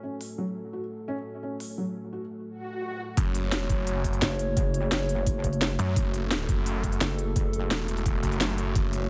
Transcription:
0.00 3.13 A3 medium
0.00 0.14 C#4 medium
0.00 3.13 F#4 medium
0.00 3.15 A4 medium
0.21 open hi-hat medium
0.38 0.42 F#3 medium
0.73 0.80 F#4 medium
1.08 1.15 C#4 loud
1.43 1.54 C#4 medium
1.60 open hi-hat medium
1.78 1.82 F#3 medium
2.13 2.20 F#4 medium
2.48 swell medium
3.17 3.68 F#1 medium
3.17 9.10 A3 medium
3.17 9.10 F#4 medium
3.17 5.95 C#5 medium
3.17 kick loud
3.17 closed hi-hat loud
3.35 closed hi-hat medium
3.52 snare loud
3.52 closed hi-hat loud
3.70 4.21 F#1 loud
3.70 kick loud
3.70 closed hi-hat medium
3.87 closed hi-hat medium
4.04 kick medium
4.04 closed hi-hat medium
4.13 closed hi-hat soft
4.22 4.55 F#1 loud
4.22 snare loud
4.22 closed hi-hat loud
4.39 closed hi-hat medium
4.57 4.90 F#1 medium
4.57 kick loud
4.57 closed hi-hat loud
4.74 closed hi-hat medium
4.92 5.77 F#1 medium
4.92 snare loud
4.92 closed hi-hat loud
5.09 closed hi-hat medium
5.27 kick loud
5.27 closed hi-hat loud
5.44 kick medium
5.44 closed hi-hat medium
5.53 closed hi-hat soft
5.61 snare loud
5.61 closed hi-hat medium
5.79 5.95 F#2 loud
5.79 closed hi-hat medium
5.96 6.47 F#1 medium
5.96 8.74 A4 medium
5.96 kick loud
5.96 closed hi-hat loud
6.14 closed hi-hat medium
6.31 snare loud
6.31 closed hi-hat loud
6.49 7.00 F#1 loud
6.49 kick loud
6.49 closed hi-hat medium
6.66 closed hi-hat loud
6.84 kick medium
6.84 closed hi-hat medium
6.92 closed hi-hat soft
7.01 7.34 F#1 loud
7.01 snare loud
7.01 closed hi-hat loud
7.19 closed hi-hat medium
7.36 7.69 F#1 medium
7.36 kick loud
7.36 closed hi-hat medium
7.53 closed hi-hat medium
7.71 8.22 E1 loud
7.71 snare loud
7.71 closed hi-hat loud
7.88 closed hi-hat medium
7.97 closed hi-hat soft
8.06 kick loud
8.06 closed hi-hat medium
8.23 8.74 F#1 medium
8.23 kick medium
8.23 closed hi-hat medium
8.32 closed hi-hat soft
8.41 snare loud
8.41 closed hi-hat medium
8.58 closed hi-hat medium
8.75 9.10 F#1 loud
8.75 9.10 C#5 medium
8.75 kick loud
8.75 closed hi-hat medium
8.93 closed hi-hat medium

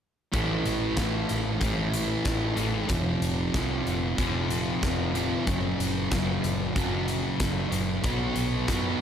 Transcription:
0.32 0.59 A1 medium
0.32 0.95 A2 medium
0.32 0.97 E3 medium
0.32 0.99 A3 medium
0.32 kick medium
0.32 closed hi-hat medium
0.65 0.91 A1 medium
0.65 closed hi-hat soft
0.96 1.23 A1 medium
0.96 1.59 A2 medium
0.96 1.62 E3 medium
0.96 1.63 A3 medium
0.96 kick loud
0.96 snare loud
0.96 closed hi-hat medium
1.29 1.56 A1 medium
1.29 closed hi-hat medium
1.61 2.13 A1 medium
1.61 2.88 A2 medium
1.61 2.59 E3 medium
1.61 2.55 A3 medium
1.61 kick medium
1.61 closed hi-hat medium
1.94 closed hi-hat medium
2.25 2.52 A1 medium
2.25 kick medium
2.25 snare medium
2.25 closed hi-hat medium
2.56 2.83 A1 medium
2.56 2.91 E3 soft
2.56 2.88 A3 medium
2.56 closed hi-hat medium
2.88 3.16 F1 medium
2.88 3.52 F2 medium
2.88 3.54 C3 medium
2.88 3.54 F3 medium
2.88 kick medium
2.88 closed hi-hat medium
3.22 3.48 F1 medium
3.22 closed hi-hat medium
3.53 3.80 C2 medium
3.53 4.16 F2 medium
3.53 4.17 C3 medium
3.53 4.19 F3 medium
3.53 kick medium
3.53 snare loud
3.53 closed hi-hat medium
3.86 4.12 F1 medium
3.86 closed hi-hat soft
4.17 4.70 F1 medium
4.17 5.44 F2 medium
4.17 5.16 C3 medium
4.17 5.13 F3 medium
4.17 kick medium
4.17 closed hi-hat medium
4.50 closed hi-hat medium
4.83 5.34 F1 medium
4.83 kick medium
4.83 snare medium
4.83 closed hi-hat medium
5.14 5.46 C3 soft
5.14 5.45 F3 medium
5.14 closed hi-hat medium
5.46 5.73 F#1 medium
5.46 6.09 F#2 medium
5.46 6.11 C#3 medium
5.46 6.13 F#3 medium
5.46 kick medium
5.46 closed hi-hat medium
5.80 6.05 F#1 medium
5.80 closed hi-hat medium
6.10 6.37 F#1 medium
6.10 6.74 F#2 medium
6.10 6.75 C#3 medium
6.10 6.76 F#3 medium
6.10 kick loud
6.10 snare loud
6.10 closed hi-hat medium
6.44 6.70 F#1 medium
6.44 closed hi-hat medium
6.75 7.27 F#1 medium
6.75 8.02 F#2 medium
6.75 7.73 C#3 medium
6.75 7.69 F#3 medium
6.75 kick loud
6.75 closed hi-hat medium
7.08 closed hi-hat medium
7.40 7.66 F#1 medium
7.40 kick loud
7.40 snare medium
7.40 closed hi-hat medium
7.71 7.98 F#1 medium
7.71 8.02 C#3 medium
7.71 8.01 F#3 medium
7.71 closed hi-hat medium
8.03 8.30 B1 medium
8.03 8.67 B2 medium
8.03 8.69 F#3 medium
8.03 8.70 B3 medium
8.03 kick medium
8.03 closed hi-hat medium
8.36 8.62 B1 medium
8.36 closed hi-hat medium
8.68 8.94 F#2 medium
8.68 9.01 B2 medium
8.68 9.01 F#3 medium
8.68 9.01 B3 medium
8.68 kick loud
8.68 snare medium
8.68 closed hi-hat medium

